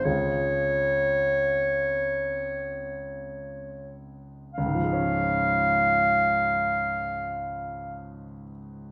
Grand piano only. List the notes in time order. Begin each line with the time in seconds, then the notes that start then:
0.05 C#2 G#3 F4 G#4
4.58 C#2
4.66 G#2
4.75 F3
4.84 G#3
4.93 C#4
5.01 F4